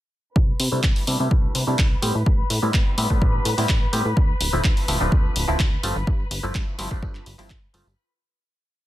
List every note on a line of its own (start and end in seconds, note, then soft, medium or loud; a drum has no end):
0.36 0.53 C2 loud
0.36 7.99 B4 medium
0.36 7.99 B5 medium
0.36 kick loud
0.60 0.69 C3 loud
0.60 open hi-hat loud
0.72 0.80 C3 loud
0.72 1.04 G3 medium
0.72 1.04 A3 medium
0.72 1.05 D4 medium
0.72 1.05 E4 medium
0.83 0.92 C2 medium
0.83 kick loud
0.83 clap loud
0.96 open hi-hat medium
1.07 1.16 C3 medium
1.07 1.18 G3 medium
1.07 1.18 A3 medium
1.07 1.18 D4 medium
1.07 1.18 E4 medium
1.07 open hi-hat loud
1.20 1.28 C3 loud
1.20 1.64 G3 medium
1.20 1.64 A3 medium
1.20 1.65 D4 medium
1.20 1.65 E4 medium
1.31 1.48 C2 medium
1.31 kick loud
1.55 1.64 C3 medium
1.55 open hi-hat medium
1.67 1.75 C3 medium
1.67 1.87 G3 medium
1.67 1.87 A3 medium
1.67 1.87 D4 medium
1.67 1.88 E4 medium
1.79 1.96 C2 medium
1.79 kick loud
1.79 clap loud
2.02 2.11 A2 medium
2.02 2.15 G3 medium
2.02 2.16 B3 medium
2.02 2.16 C4 medium
2.02 2.16 G4 medium
2.02 open hi-hat loud
2.15 2.23 A2 medium
2.26 2.44 A1 loud
2.26 kick loud
2.50 2.59 A2 loud
2.50 open hi-hat loud
2.62 2.71 A2 loud
2.62 2.95 G3 medium
2.62 2.95 B3 medium
2.62 2.95 C4 medium
2.62 2.95 E4 medium
2.74 2.83 A1 medium
2.74 kick loud
2.74 clap loud
2.98 3.07 A2 loud
2.98 3.08 G3 medium
2.98 3.08 B3 medium
2.98 3.09 C4 medium
2.98 3.09 E4 medium
2.98 open hi-hat loud
3.10 3.18 A2 loud
3.10 3.55 G3 medium
3.10 3.55 B3 medium
3.10 3.55 C4 medium
3.10 3.55 D4 medium
3.10 kick medium
3.22 3.39 A1 loud
3.22 kick loud
3.45 3.54 A2 medium
3.45 open hi-hat loud
3.58 3.66 A2 medium
3.58 3.78 G3 medium
3.58 3.78 B3 medium
3.58 3.78 C4 medium
3.58 3.78 E4 medium
3.58 open hi-hat medium
3.69 3.86 A1 loud
3.69 kick loud
3.69 clap loud
3.93 4.02 A2 medium
3.93 4.06 G3 medium
3.93 4.06 B3 medium
3.93 4.06 C4 medium
3.93 4.06 G4 medium
3.93 open hi-hat loud
4.05 4.13 A2 medium
4.17 4.34 D2 loud
4.17 kick loud
4.17 tambourine medium
4.29 tambourine soft
4.41 4.49 D1 loud
4.41 open hi-hat loud
4.53 4.61 D1 loud
4.53 4.85 F3 medium
4.53 4.85 A3 medium
4.53 4.86 C4 medium
4.53 4.86 E4 medium
4.53 tambourine medium
4.64 4.73 D2 medium
4.64 kick loud
4.64 clap loud
4.77 open hi-hat medium
4.88 4.97 D1 medium
4.88 4.99 F3 medium
4.88 4.99 A3 medium
4.88 4.99 C4 medium
4.88 4.99 E4 medium
4.88 open hi-hat loud
5.00 5.09 D1 loud
5.00 5.45 F3 medium
5.00 5.45 A3 medium
5.00 5.45 C4 medium
5.00 5.46 D4 medium
5.00 tambourine medium
5.12 5.29 D2 loud
5.12 kick loud
5.12 tambourine medium
5.25 tambourine soft
5.36 5.45 D1 loud
5.36 open hi-hat loud
5.48 5.56 D1 medium
5.48 5.68 F3 medium
5.48 5.68 A3 medium
5.48 5.68 C4 medium
5.48 5.68 E4 medium
5.48 tambourine medium
5.60 5.77 D2 loud
5.60 kick loud
5.60 clap loud
5.83 5.92 G1 medium
5.83 5.97 F3 medium
5.83 5.97 A3 medium
5.83 5.97 C4 medium
5.83 5.97 F4 medium
5.83 open hi-hat loud
5.96 6.04 G1 medium
5.96 tambourine medium
6.07 6.24 G2 loud
6.07 kick loud
6.19 tambourine soft
6.31 6.40 G1 loud
6.31 open hi-hat loud
6.43 6.51 G1 loud
6.43 6.76 F3 medium
6.43 6.76 A3 medium
6.43 6.76 C4 medium
6.43 6.76 E4 medium
6.43 tambourine medium
6.55 6.64 G2 medium
6.55 kick loud
6.55 clap loud
6.67 tambourine soft
6.78 6.88 G1 loud
6.78 6.89 F3 medium
6.78 6.89 A3 medium
6.78 6.89 C4 medium
6.78 6.90 E4 medium
6.78 open hi-hat loud
6.91 6.99 G1 loud
6.91 7.36 F3 medium
6.91 7.36 A3 medium
6.91 7.36 C4 medium
6.91 7.36 D4 medium
6.91 kick medium
6.91 tambourine medium
7.03 7.20 G2 loud
7.03 kick loud
7.03 tambourine medium
7.15 clap soft
7.15 tambourine soft
7.26 7.35 G1 loud
7.26 open hi-hat loud
7.38 7.52 G1 medium
7.38 7.59 F3 medium
7.38 7.59 A3 medium
7.38 7.59 C4 medium
7.38 7.59 E4 medium
7.38 open hi-hat medium
7.38 tambourine medium
7.50 7.67 G2 medium
7.50 kick loud
7.50 clap loud
7.63 tambourine soft
7.74 7.83 G1 medium
7.74 7.87 F3 medium
7.74 7.87 A3 medium
7.74 7.87 C4 medium
7.74 7.87 F4 medium
7.74 open hi-hat loud
7.87 7.95 G1 medium
7.87 tambourine medium